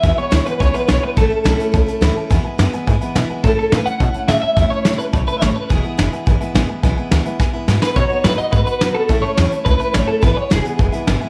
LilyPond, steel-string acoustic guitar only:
\new Staff \with { instrumentName = "Steel-string acoustic guitar" } { \time 4/4 \key e \major \tempo 4 = 212 <e, b, e gis b e'>8 <e gis b e'>8 <e, b, e gis b e'>8 <e gis b e'>8 <e gis b e'>8 <e gis b e'>8 <e, b, e gis b e'>8 <e gis b e'>8 | <a, e a cis' e'>8 <a cis' e'>8 <a, e a cis' e'>8 <a cis' e'>8 <e a cis' e'>8 <a cis' e'>8 <a, e a cis' e'>8 <a cis' e'>8 | <e, b, e gis b e'>8 <e gis b e'>8 <e, b, e gis b e'>8 <e gis b e'>8 <e gis b e'>8 <e gis b e'>8 <e, b, e gis b e'>8 <e gis b e'>8 | <a, e a cis' e'>8 <a cis' e'>8 <a, e a cis' e'>8 <a cis' e'>8 <e a cis' e'>8 <a cis' e'>8 <a, e a cis' e'>8 <a cis' e'>8 |
<a, e a cis' e'>8 <a cis' e'>8 <a, e a cis' e'>8 <a cis' e'>8 <e a cis' e'>8 <a cis' e'>8 <a, e a cis' e'>8 <a cis' e'>8 | <e, b, e gis b e'>8 <e gis b e'>8 <e, b, e gis b e'>8 <e gis b e'>8 <e gis b e'>8 <e gis b e'>8 <e, b, e gis b e'>8 <e gis b e'>8 | <e, b, e gis b e'>8 <e gis b e'>8 <e, b, e gis b e'>8 <e gis b e'>8 <e gis b e'>8 <e gis b e'>8 <e, b, e gis b e'>8 <e gis b e'>8 | <b, fis b dis' fis'>8 <b dis' fis'>8 <b, fis b dis' fis'>8 <b dis' fis'>8 <fis b dis' fis'>8 <b dis' fis'>8 <b, fis b dis' fis'>8 <b dis' fis'>8 |
<a, e a cis' e'>8 <a cis' e'>8 <a, e a cis' e'>8 <a cis' e'>8 <e a cis' e'>8 <a cis' e'>8 <a, e a cis' e'>8 <a cis' e'>8 | <e, b, e gis b e'>8 <e gis b e'>8 <e, b, e gis b e'>8 <e gis b e'>8 <e gis b e'>8 <e gis b e'>8 <e, b, e gis b e'>8 <e gis b e'>8 | }